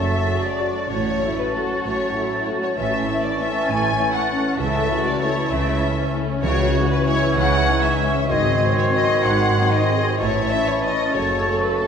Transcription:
Already playing: double bass section F#1, cello section F#2, harp F#2 A3 C#4 F#4 A4 C#5, bassoon F#3, clarinet C#4, viola section A4, violin section E5, oboe A5, flute C#6
0.11 harp A3
0.27 french horn section A3 F#4, harp F#4, viola section G#4
0.44 harp C#5, violin section D5
0.59 french horn section A3 F#4, viola section F#4, harp A4
0.76 harp C#5
0.89 double bass section A1, harp A2, cello section A2, bassoon F#3, clarinet C#4, viola section F#4, violin section C#5, oboe A5, flute C#6
1.06 harp A3
1.21 french horn section A3 F#4, viola section E4, harp F#4
1.38 violin section B4, harp C#5
1.52 french horn section A3 F#4, viola section F#4, violin section A4, harp A4
1.70 harp C#5
1.84 double bass section A1, harp A2, cello section A2, violin section C#5
1.99 harp A3
2.15 french horn section A3 F#4, viola section E4, harp F#4
2.31 harp C#5
2.46 french horn section A3 F#4, viola section F#4, harp A4
2.62 violin section C#5, harp C#5
2.77 double bass section A1, harp A2, cello section A2, bassoon E3, clarinet C#4, viola section C#4, violin section E5, oboe A5, flute C#6
2.92 harp A3
3.07 french horn section A3 C#4, viola section E4, harp E4
3.23 harp C#5, violin section D5
3.38 french horn section A3 C#4, viola section C#4, harp A4, violin section E5
3.53 harp C#5
3.68 double bass section A1, harp A2, cello section A2, viola section E4, violin section G#5
3.82 harp A3
3.97 french horn section A3 C#4, harp E4, viola section E4
4.13 harp C#5, violin section F#5
4.30 french horn section A3 C#4, viola section C#4
4.44 harp C#5
4.58 double bass section C#2, harp C#3, cello section C#3, bassoon E3, clarinet C#4, viola section A4, violin section E5, oboe A5, flute C#6
4.73 harp A3
4.89 french horn section A3 E4, harp E4, viola section F#4
5.05 harp C#5, violin section D5
5.21 french horn section A3 E4, viola section E4, harp A4, violin section C#5
5.36 harp C#5
5.50 double bass section C#2, harp C#3, cello section C#3, violin section E5
5.66 harp A3
5.81 french horn section A3 E4, viola section C#4, harp E4
5.97 harp C#5
6.13 french horn section A3 E4, harp A4
6.28 harp C#5
6.43 double bass section C#2, harp C#3, cello section C#3, timpani C#3, bassoon E3, clarinet C#4, viola section F#4, violin section C#5, oboe G#5, flute C#6
6.58 harp G#3
6.73 french horn section G#3 E4, harp E4
6.91 violin section B4, harp C#5
7.06 french horn section G#3 E4, viola section E4, harp G#4, violin section C#5
7.22 harp C#5
7.36 double bass section C#2, harp C#3, cello section C#3, violin section F#5
7.52 harp G#3
7.67 french horn section G#3 E4, viola section D#4, harp E4
7.82 harp C#5, violin section E5
7.99 french horn section G#3 E4, viola section C#4, harp G#4
8.14 harp C#5
8.29 double bass section G#1, harp G#2, cello section G#2, bassoon D#3, viola section C4, clarinet F#4, violin section D#5, oboe G#5, flute C6
8.45 harp G#3
8.62 french horn section F#3 C4
8.77 harp C5, violin section C#5
8.93 french horn section F#3 C4, harp G#4, violin section D#5
9.10 harp C5
9.24 double bass section G#1, cello section G#2, harp G#2, viola section D#4, violin section F#5
9.40 harp G#3
9.56 french horn section F#3 C4, viola section D#4
9.72 harp C5, violin section D#5
9.88 french horn section F#3 C4, viola section G#4, harp G#4
10.05 harp C5
10.19 double bass section A1, harp A2, cello section A2, bassoon E3, viola section E4, clarinet E4, violin section C#5, oboe A5, flute C#6
10.35 harp C#4
10.50 french horn section E3 C#4, harp E4, violin section E5
10.66 violin section C#5, harp C#5
10.83 french horn section E3 C#4, viola section C#4, harp E4, violin section D#5
10.99 harp C#5
11.14 double bass section F#1, harp F#2, cello section F#2, bassoon C#3, clarinet F#4, viola section A4, violin section C#5
11.46 french horn section A3 C#4, harp F#4
11.62 violin section B4
11.78 french horn section A3 C#4, violin section A4, harp C#5

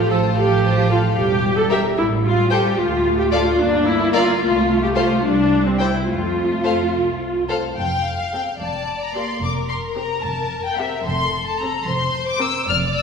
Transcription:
Already playing: double bass section A1, cello section F3, violin section A4 F5
0.10 violin section F4 C5 A5, viola section A4
0.36 cello section F3, viola section G4, violin section A4 F5
0.64 violin section F4 C5 A5
0.90 viola section F4, violin section A4 F5
1.17 double bass section E1, cello section G3, viola section G4
1.57 viola section A4
1.70 viola section G4, violin section A#4 E5
1.97 double bass section A1, viola section E4
2.24 viola section F4
2.51 viola section G4, violin section A4 C5 G5
2.77 double bass section D2, cello section A3, viola section F4
3.18 viola section G4
3.31 viola section F4, violin section A4 D5 F5
3.59 double bass section G1, cello section A#3, viola section D4
3.86 viola section E4
4.13 viola section F4, violin section A#4 D5 F5
4.41 double bass section C2, cello section A3, viola section F4
4.82 viola section G4
4.95 viola section F4, violin section A4 C5 F5
5.23 double bass section C2, cello section G3, viola section D4
5.66 viola section C4
5.78 viola section E4, violin section C5 G5
6.08 double bass section F2, cello section A3, viola section F4
6.63 violin section A4 C5 F5
6.93 double bass section C2
7.49 violin section A4 C5 F5
7.76 double bass section F1, cello section F2, violin section F5 G5
8.19 violin section F5
8.32 viola section C4 A4, violin section G5
8.60 double bass section F1, cello section F2, violin section D5 A5
9.03 violin section A#5
9.14 viola section A#3 G4, violin section C6
9.41 double bass section F1, cello section F2, violin section A#4 D6
9.69 violin section C6
9.96 viola section C4 G4, violin section A#5
10.23 double bass section F1, cello section F2, violin section A5
10.66 violin section G5
10.78 viola section C4 G4, violin section E5
11.05 double bass section F1, cello section F2, violin section A4 C6
11.47 violin section A5
11.59 viola section C4 A4, violin section A#5
11.86 double bass section F1, cello section F2, violin section C5 C6
12.28 violin section D6
12.40 viola section C4 A#4, violin section E6
12.68 double bass section F1, cello section F2, violin section D5 F6
12.96 violin section E6

